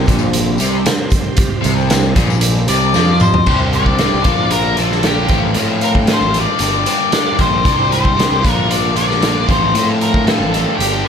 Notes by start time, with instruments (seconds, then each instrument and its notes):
Already playing: string machine C3 G3 G4 C5
0.06 picked electric bass A#1, overdriven electric guitar A#2, kick, closed hi-hat, tambourine
0.19 tambourine
0.33 closed hi-hat
0.58 picked electric bass C2, overdriven electric guitar C3, closed hi-hat, tambourine
0.86 snare, closed hi-hat, tambourine
0.98 tambourine
1.10 kick, closed hi-hat, tambourine
1.24 tambourine
1.37 kick, closed hi-hat, tambourine
1.62 picked electric bass C2, overdriven electric guitar C3, closed hi-hat, tambourine
1.78 tambourine
1.90 snare, closed hi-hat, tambourine
2.16 picked electric bass A#1, overdriven electric guitar A#2, kick, closed hi-hat, tambourine
2.30 tambourine
2.41 closed hi-hat
2.68 picked electric bass C2, overdriven electric guitar C3, lead electric guitar D5, closed hi-hat, tambourine
2.81 tambourine
2.94 picked electric bass F2, overdriven electric guitar F3, snare, tambourine
3.07 tambourine
3.20 lead electric guitar C5, mid tom, tambourine
3.33 floor tom, tambourine
3.46 picked electric bass C2, overdriven electric guitar C3 G3 C4 D4 G4, string machine G4 C5 D5 C6, lead electric guitar C5, kick, crash
3.72 overdriven electric guitar C4 D4 G4, lead electric guitar D5, closed hi-hat
3.86 kick
3.98 overdriven electric guitar G3 C4 D4 G4, snare, closed hi-hat
4.14 picked electric bass C2
4.24 picked electric bass A#1, overdriven electric guitar A#2 D3 A#3 D4 F4, string machine A#4 F5 D6, kick, closed hi-hat
4.51 overdriven electric guitar D3 A#3 D4 F4, lead electric guitar A#4, closed hi-hat
4.77 picked electric bass A#1, overdriven electric guitar A#3 D4 F4, lead electric guitar A4, closed hi-hat
4.91 snare
5.03 overdriven electric guitar A#2 D3 A#3 D4 F4, lead electric guitar G4, snare, closed hi-hat
5.27 picked electric bass A1, overdriven electric guitar F3 A3 C4 F4, string machine A4 G5 C6, kick, closed hi-hat
5.32 overdriven electric guitar A2
5.54 overdriven electric guitar A2 F3 A3 C4 F4, picked electric bass A2, closed hi-hat
5.81 overdriven electric guitar A3 C4 F4, lead electric guitar A#4, closed hi-hat
5.95 kick
6.07 overdriven electric guitar F3 A3 C4 F4, snare, closed hi-hat
6.13 lead electric guitar C5
6.21 picked electric bass A1
6.34 overdriven electric guitar A2 F3 A3 C4 F4, closed hi-hat
6.40 lead electric guitar D5
6.59 picked electric bass G1, overdriven electric guitar G2 D3 G3 A#3 D4 G4, string machine A#4 D6, lead electric guitar D5, closed hi-hat
6.85 overdriven electric guitar G3 A#3 D4 G4, lead electric guitar D5, closed hi-hat
7.12 overdriven electric guitar G2 D3 G3 A#3 D4 G4, snare, closed hi-hat
7.38 picked electric bass A#1, overdriven electric guitar G3 A#3 D4 G4, lead electric guitar C5, kick, closed hi-hat
7.64 picked electric bass C2, overdriven electric guitar C3 G3 C4 D4 G4, string machine C5 D5, kick, closed hi-hat
7.90 overdriven electric guitar C4 D4 G4, lead electric guitar C5, closed hi-hat
8.05 kick
8.16 overdriven electric guitar G3 C4 D4 G4, snare, closed hi-hat
8.31 picked electric bass C2
8.41 overdriven electric guitar A#2 D3 A#3 D4 F4, string machine A#4 D5 F5, kick
8.45 picked electric bass A#1, closed hi-hat
8.51 lead electric guitar A#4
8.68 overdriven electric guitar D3 A#3 D4 F4, lead electric guitar D5, closed hi-hat
8.96 picked electric bass A#1, overdriven electric guitar A#3 D4 F4, lead electric guitar D5, closed hi-hat
9.11 snare
9.22 overdriven electric guitar A#2 D3 A#3 D4 F4, snare, closed hi-hat
9.46 picked electric bass A1, overdriven electric guitar A2 F3 A3 C4 F4, string machine A4 G5 C6, kick, closed hi-hat
9.50 lead electric guitar C5
9.74 overdriven electric guitar A2 F3 A3 C4 F4, picked electric bass A2, lead electric guitar C5, closed hi-hat
10.00 overdriven electric guitar A3 C4 F4, lead electric guitar A#4, closed hi-hat
10.14 kick
10.27 overdriven electric guitar F3 A3 C4 F4, lead electric guitar A4, snare, closed hi-hat
10.40 picked electric bass A1
10.53 overdriven electric guitar A2 F3 A3 C4 F4, lead electric guitar A4, closed hi-hat
10.77 picked electric bass G1, overdriven electric guitar G2 D3 G3, lead electric guitar G4, string machine A#4 D6, closed hi-hat
10.82 overdriven electric guitar A#3 D4 G4
11.05 lead electric guitar D5